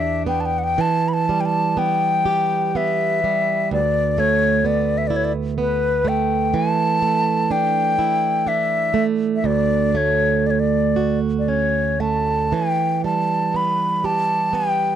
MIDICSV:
0, 0, Header, 1, 4, 480
1, 0, Start_track
1, 0, Tempo, 1032702
1, 362, Time_signature, 3, 2, 24, 8
1, 362, Tempo, 981997
1, 1322, Tempo, 941915
1, 2762, Tempo, 966184
1, 4682, Tempo, 1025641
1, 6602, Tempo, 975610
1, 7300, End_track
2, 0, Start_track
2, 0, Title_t, "Flute"
2, 0, Program_c, 0, 73
2, 0, Note_on_c, 0, 76, 57
2, 108, Note_off_c, 0, 76, 0
2, 130, Note_on_c, 0, 79, 60
2, 187, Note_on_c, 0, 81, 36
2, 194, Note_off_c, 0, 79, 0
2, 211, Note_on_c, 0, 79, 57
2, 218, Note_off_c, 0, 81, 0
2, 271, Note_on_c, 0, 78, 46
2, 278, Note_off_c, 0, 79, 0
2, 296, Note_on_c, 0, 79, 69
2, 303, Note_off_c, 0, 78, 0
2, 376, Note_on_c, 0, 81, 79
2, 384, Note_off_c, 0, 79, 0
2, 511, Note_on_c, 0, 83, 48
2, 518, Note_off_c, 0, 81, 0
2, 535, Note_on_c, 0, 81, 72
2, 543, Note_off_c, 0, 83, 0
2, 668, Note_on_c, 0, 79, 55
2, 676, Note_off_c, 0, 81, 0
2, 693, Note_on_c, 0, 81, 79
2, 700, Note_off_c, 0, 79, 0
2, 854, Note_on_c, 0, 79, 77
2, 861, Note_off_c, 0, 81, 0
2, 1333, Note_on_c, 0, 76, 70
2, 1340, Note_off_c, 0, 79, 0
2, 1817, Note_off_c, 0, 76, 0
2, 1826, Note_on_c, 0, 74, 82
2, 2063, Note_on_c, 0, 73, 76
2, 2070, Note_off_c, 0, 74, 0
2, 2299, Note_on_c, 0, 74, 68
2, 2307, Note_off_c, 0, 73, 0
2, 2460, Note_on_c, 0, 76, 59
2, 2468, Note_off_c, 0, 74, 0
2, 2509, Note_on_c, 0, 74, 64
2, 2517, Note_off_c, 0, 76, 0
2, 2555, Note_on_c, 0, 73, 60
2, 2563, Note_off_c, 0, 74, 0
2, 2597, Note_on_c, 0, 74, 61
2, 2604, Note_off_c, 0, 73, 0
2, 2636, Note_off_c, 0, 74, 0
2, 2778, Note_on_c, 0, 71, 67
2, 3017, Note_on_c, 0, 79, 70
2, 3025, Note_off_c, 0, 71, 0
2, 3252, Note_on_c, 0, 81, 90
2, 3259, Note_off_c, 0, 79, 0
2, 3730, Note_on_c, 0, 79, 82
2, 3737, Note_off_c, 0, 81, 0
2, 4208, Note_on_c, 0, 76, 77
2, 4216, Note_off_c, 0, 79, 0
2, 4486, Note_off_c, 0, 76, 0
2, 4645, Note_on_c, 0, 76, 57
2, 4693, Note_on_c, 0, 74, 76
2, 4700, Note_off_c, 0, 76, 0
2, 4932, Note_on_c, 0, 73, 76
2, 4939, Note_off_c, 0, 74, 0
2, 5164, Note_on_c, 0, 74, 65
2, 5171, Note_off_c, 0, 73, 0
2, 5184, Note_on_c, 0, 73, 56
2, 5191, Note_off_c, 0, 74, 0
2, 5226, Note_on_c, 0, 74, 65
2, 5233, Note_off_c, 0, 73, 0
2, 5505, Note_off_c, 0, 74, 0
2, 5597, Note_on_c, 0, 74, 47
2, 5643, Note_on_c, 0, 73, 64
2, 5650, Note_off_c, 0, 74, 0
2, 5885, Note_on_c, 0, 81, 63
2, 5892, Note_off_c, 0, 73, 0
2, 6137, Note_on_c, 0, 79, 74
2, 6144, Note_off_c, 0, 81, 0
2, 6371, Note_off_c, 0, 79, 0
2, 6374, Note_on_c, 0, 81, 78
2, 6615, Note_on_c, 0, 83, 70
2, 6623, Note_off_c, 0, 81, 0
2, 6857, Note_on_c, 0, 81, 80
2, 6864, Note_off_c, 0, 83, 0
2, 7101, Note_on_c, 0, 79, 77
2, 7109, Note_off_c, 0, 81, 0
2, 7300, Note_off_c, 0, 79, 0
2, 7300, End_track
3, 0, Start_track
3, 0, Title_t, "Cello"
3, 0, Program_c, 1, 42
3, 0, Note_on_c, 1, 62, 73
3, 123, Note_off_c, 1, 62, 0
3, 7300, End_track
4, 0, Start_track
4, 0, Title_t, "Steel-string acoustic guitar"
4, 0, Program_c, 2, 25
4, 0, Note_on_c, 2, 40, 72
4, 0, Note_on_c, 2, 59, 50
4, 0, Note_on_c, 2, 62, 44
4, 0, Note_on_c, 2, 67, 55
4, 121, Note_off_c, 2, 59, 0
4, 123, Note_on_c, 2, 59, 45
4, 363, Note_off_c, 2, 40, 0
4, 363, Note_on_c, 2, 52, 62
4, 413, Note_off_c, 2, 62, 0
4, 611, Note_off_c, 2, 59, 0
4, 613, Note_on_c, 2, 55, 44
4, 846, Note_on_c, 2, 59, 55
4, 1081, Note_off_c, 2, 67, 0
4, 1083, Note_on_c, 2, 67, 50
4, 1325, Note_off_c, 2, 59, 0
4, 1327, Note_on_c, 2, 59, 50
4, 1568, Note_off_c, 2, 55, 0
4, 1574, Note_on_c, 2, 55, 46
4, 1812, Note_off_c, 2, 52, 0
4, 1817, Note_on_c, 2, 38, 67
4, 1860, Note_off_c, 2, 67, 0
4, 1861, Note_off_c, 2, 55, 0
4, 2054, Note_on_c, 2, 57, 49
4, 2070, Note_off_c, 2, 59, 0
4, 2291, Note_on_c, 2, 59, 53
4, 2525, Note_on_c, 2, 64, 49
4, 2635, Note_off_c, 2, 64, 0
4, 2761, Note_off_c, 2, 59, 0
4, 2767, Note_on_c, 2, 59, 47
4, 2998, Note_off_c, 2, 57, 0
4, 3000, Note_on_c, 2, 57, 51
4, 3240, Note_off_c, 2, 38, 0
4, 3243, Note_on_c, 2, 52, 67
4, 3288, Note_off_c, 2, 59, 0
4, 3482, Note_off_c, 2, 57, 0
4, 3484, Note_on_c, 2, 57, 50
4, 3724, Note_on_c, 2, 62, 54
4, 3963, Note_on_c, 2, 64, 52
4, 4199, Note_off_c, 2, 62, 0
4, 4201, Note_on_c, 2, 62, 50
4, 4434, Note_off_c, 2, 57, 0
4, 4436, Note_on_c, 2, 57, 54
4, 4684, Note_off_c, 2, 52, 0
4, 4685, Note_on_c, 2, 38, 69
4, 4729, Note_off_c, 2, 64, 0
4, 4920, Note_off_c, 2, 57, 0
4, 4922, Note_on_c, 2, 57, 48
4, 5397, Note_on_c, 2, 66, 49
4, 5638, Note_off_c, 2, 62, 0
4, 5640, Note_on_c, 2, 61, 40
4, 5878, Note_off_c, 2, 57, 0
4, 5884, Note_on_c, 2, 57, 44
4, 6126, Note_off_c, 2, 38, 0
4, 6128, Note_on_c, 2, 52, 53
4, 6176, Note_off_c, 2, 57, 0
4, 6177, Note_off_c, 2, 61, 0
4, 6177, Note_off_c, 2, 66, 0
4, 6372, Note_on_c, 2, 55, 47
4, 6606, Note_on_c, 2, 59, 47
4, 6851, Note_on_c, 2, 67, 50
4, 7086, Note_off_c, 2, 59, 0
4, 7091, Note_on_c, 2, 59, 47
4, 7300, Note_off_c, 2, 52, 0
4, 7300, Note_off_c, 2, 55, 0
4, 7300, Note_off_c, 2, 59, 0
4, 7300, Note_off_c, 2, 67, 0
4, 7300, End_track
0, 0, End_of_file